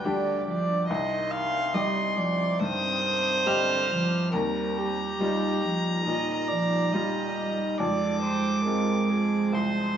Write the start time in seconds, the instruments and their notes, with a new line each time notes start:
Already playing: upright piano D2 G3 D4 G4, ambient pad G3 D4 D5, violin G5
0.04 cello D3, upright piano G3 D4 G4, viola D5
0.46 cello F3, viola D5
0.88 upright piano C2, cello D#3, ambient pad G3 C4 C5, viola D#5, violin C6
1.31 viola F5
1.73 cello G3, upright piano G3 D#4 G4, viola D#5
2.16 cello F3, viola D5
2.59 upright piano G2, cello D#3, viola C5, violin D#6
3.46 cello D3, upright piano G3 G4 D#5, violin F6
3.91 cello F3
4.32 upright piano D#2, ambient pad G3 D#4 F4, cello G3, viola A#4, violin A#5
4.78 viola G4
5.19 cello G3, upright piano G3 D#4 F4
5.64 cello F3
6.05 upright piano A#2, cello D#3, viola D#5
6.48 cello F3, viola D5
6.91 cello G3, upright piano G3 D#4 F4, viola D#5
7.78 upright piano F2, ambient pad G#3 F4 C5, cello G#3, viola D5, violin D6
8.23 viola C5
8.65 upright piano G#3 C4 F4, viola A#4
9.10 viola G#4
9.53 upright piano C2, viola C5, violin C6